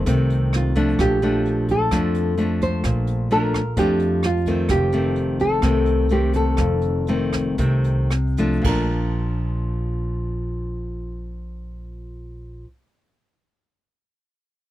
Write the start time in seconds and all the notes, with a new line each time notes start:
Already playing: A4
0.06 C2 C3 D#3 A3 C4, kick, closed hi-hat
0.30 closed hi-hat
0.53 F4, cross-stick, closed hi-hat
0.76 F3 A3 D4, kick, closed hi-hat
0.99 A#1 A#2 G4, kick, cross-stick, closed hi-hat
1.22 F3 A3 D4, closed hi-hat
1.46 closed hi-hat
1.68 A4, kick, closed hi-hat
1.91 F2 F3 A3 D4, kick, cross-stick, closed hi-hat
2.15 closed hi-hat
2.38 F3 A3 D4, closed hi-hat
2.61 C5, kick, closed hi-hat
2.84 A#1 A#2, kick, cross-stick, closed hi-hat
3.07 closed hi-hat
3.31 F3 A3 D4 A#4, closed hi-hat
3.54 kick, cross-stick, closed hi-hat
3.77 F2 F3 A3 D4 G4, kick, closed hi-hat
4.00 closed hi-hat
4.23 F4, cross-stick, closed hi-hat
4.46 D#3 A3 C4, kick, closed hi-hat
4.69 F1 F2 G4, kick, cross-stick, closed hi-hat
4.92 D#3 A3 C4, closed hi-hat
5.16 closed hi-hat
5.39 A4, kick, closed hi-hat
5.62 C2 C3 D#3 A3 C4, kick, cross-stick, closed hi-hat
5.86 closed hi-hat
6.09 D#3 A3 C4 G4, closed hi-hat
6.33 A4, kick, closed hi-hat
6.57 F1 F2, kick, cross-stick, closed hi-hat
6.82 closed hi-hat
7.07 D#3 A3 C4, closed hi-hat
7.33 kick, cross-stick, closed hi-hat
7.58 C2 C3 D#3 A3 C4, kick, closed hi-hat
7.84 closed hi-hat
8.10 cross-stick, closed hi-hat
8.37 F3 A3 D4, kick, closed hi-hat
8.62 A#1 A#2 F3 A#4, kick, crash
8.68 D4